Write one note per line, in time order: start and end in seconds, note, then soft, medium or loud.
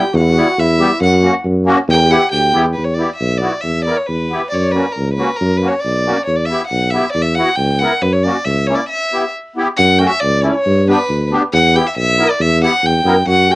0.00 0.15 G4 medium
0.00 0.12 G5 medium
0.13 0.40 E2 loud
0.13 0.23 F#4 medium
0.13 0.60 F#5 medium
0.21 0.31 E4 medium
0.30 0.61 F#4 medium
0.37 0.47 G3 medium
0.37 0.47 B3 medium
0.37 0.48 E4 medium
0.58 0.84 E2 medium
0.58 1.04 E4 medium
0.58 1.02 E5 medium
0.79 0.90 G3 medium
0.79 0.91 B3 medium
0.79 0.91 G4 medium
1.01 1.27 F#2 loud
1.01 1.24 F#4 medium
1.01 1.22 F#5 medium
1.22 1.34 A#3 medium
1.22 1.34 C#4 medium
1.22 1.34 F#4 medium
1.44 1.71 F#2 medium
1.65 1.77 A#3 medium
1.65 1.78 C#4 medium
1.65 1.78 F#4 loud
1.88 2.15 E2 loud
1.88 1.96 G4 medium
1.88 2.12 G5 loud
1.95 2.04 A#4 medium
2.02 2.29 G4 loud
2.10 2.22 B3 medium
2.10 2.22 E4 medium
2.10 2.22 G4 medium
2.10 2.31 F#5 loud
2.29 2.52 D2 medium
2.29 2.52 G4 medium
2.29 2.53 G5 loud
2.54 2.75 E2 medium
2.54 2.65 B3 medium
2.54 2.66 E4 medium
2.54 2.66 G4 medium
2.73 2.86 B4 medium
2.78 3.04 E2 medium
2.84 2.96 C#5 medium
2.94 3.09 B3 soft
2.94 3.15 D5 medium
2.98 3.10 E4 soft
2.98 3.10 G4 medium
3.16 3.39 E5 medium
3.21 3.47 B1 medium
3.38 3.53 B3 medium
3.38 3.62 D5 medium
3.42 3.53 E4 medium
3.42 3.54 F#4 medium
3.61 3.91 E2 medium
3.61 3.84 E5 medium
3.85 3.97 B3 medium
3.85 3.97 E4 soft
3.85 3.98 A#4 medium
3.85 3.98 D5 medium
3.97 4.08 C#5 medium
4.07 4.35 E2 medium
4.07 4.49 B4 medium
4.30 4.42 B3 medium
4.30 4.42 E4 medium
4.30 4.42 G4 medium
4.50 4.80 F#2 medium
4.50 4.55 C#5 medium
4.50 4.53 D5 medium
4.50 4.62 D5 medium
4.60 4.73 C#5 medium
4.71 4.85 A#3 soft
4.71 4.86 F#4 medium
4.71 4.94 B4 medium
4.76 4.86 C#4 soft
4.92 5.13 A#4 medium
4.97 5.23 C#2 medium
5.14 5.38 B4 medium
5.18 5.29 A#3 medium
5.18 5.30 C#4 soft
5.18 5.30 F#4 medium
5.36 5.58 A#4 medium
5.41 5.67 F#2 medium
5.57 5.69 B4 medium
5.62 5.73 A#3 medium
5.62 5.74 C#4 soft
5.62 5.74 F#4 medium
5.68 5.81 C#5 medium
5.80 6.25 D5 medium
5.84 6.11 B1 medium
6.06 6.17 A#3 medium
6.06 6.18 C#4 soft
6.06 6.18 F#4 medium
6.25 6.54 E2 medium
6.25 6.37 C#5 medium
6.36 6.47 D5 medium
6.45 6.66 E5 medium
6.50 6.61 B3 medium
6.50 6.62 E4 soft
6.50 6.62 G4 medium
6.67 6.92 F#5 medium
6.71 6.98 B1 medium
6.90 7.05 B3 soft
6.90 7.05 E4 medium
6.90 7.11 E5 medium
6.95 7.06 G4 medium
7.12 7.41 E2 medium
7.12 7.23 D5 medium
7.22 7.36 E5 medium
7.35 7.49 B3 medium
7.35 7.49 E4 soft
7.35 7.57 F#5 medium
7.39 7.50 F#4 medium
7.55 7.85 C#2 medium
7.55 7.80 G5 medium
7.79 7.93 B3 medium
7.79 7.93 E4 medium
7.79 8.04 F#5 medium
7.83 7.93 A#4 medium
8.02 8.29 F#2 medium
8.02 8.14 B4 medium
8.13 8.25 C#5 medium
8.23 8.36 A#3 medium
8.23 8.36 C#4 soft
8.23 8.37 F#4 medium
8.23 8.46 D5 medium
8.45 8.72 C#2 medium
8.45 8.68 E5 medium
8.67 8.80 A#3 medium
8.67 8.80 C#4 medium
8.67 8.81 E4 medium
8.67 8.76 C#5 medium
8.75 8.88 D5 medium
8.88 9.30 E5 medium
9.12 9.24 B3 medium
9.12 9.24 E4 soft
9.12 9.24 G4 medium
9.56 9.67 B3 medium
9.56 9.68 E4 medium
9.56 9.68 G4 medium
9.77 10.05 F#2 loud
9.77 10.00 F#5 loud
9.98 10.10 A3 medium
9.98 10.11 C#4 medium
9.98 10.11 F#4 medium
9.98 10.09 G5 medium
10.09 10.21 E5 loud
10.20 10.49 C#2 medium
10.20 10.42 D5 loud
10.42 10.54 A3 medium
10.42 10.54 C#4 medium
10.42 10.55 E4 medium
10.42 10.53 D5 medium
10.53 10.87 C#5 medium
10.66 10.92 G2 loud
10.88 10.99 B3 medium
10.88 10.99 D4 medium
10.88 10.99 G4 medium
10.88 11.29 B4 medium
11.09 11.35 D2 medium
11.31 11.42 B3 medium
11.31 11.42 D4 medium
11.31 11.42 G4 medium
11.53 11.79 E2 loud
11.53 11.78 F#5 loud
11.75 11.85 B3 medium
11.75 11.85 E4 medium
11.75 11.86 G4 medium
11.75 11.88 G5 loud
11.87 11.97 E5 medium
11.96 12.22 B1 medium
11.96 12.31 E5 loud
12.19 12.29 B3 medium
12.19 12.29 E4 medium
12.19 12.29 A#4 medium
12.30 12.43 D5 medium
12.39 12.65 E2 medium
12.39 12.62 E5 loud
12.62 12.72 B3 medium
12.62 12.73 E4 medium
12.62 12.73 G4 medium
12.62 12.87 F#5 loud
12.83 13.02 E2 medium
12.83 13.27 G5 medium
13.04 13.23 F#2 medium
13.04 13.15 B3 medium
13.04 13.16 E4 medium
13.04 13.16 A#4 medium
13.25 13.52 F#2 medium
13.25 13.49 F#4 medium
13.25 13.53 F#5 loud
13.47 13.55 A3 medium
13.47 13.55 C#4 medium
13.47 13.55 F#4 medium
13.47 13.55 G4 medium
13.47 13.55 G5 medium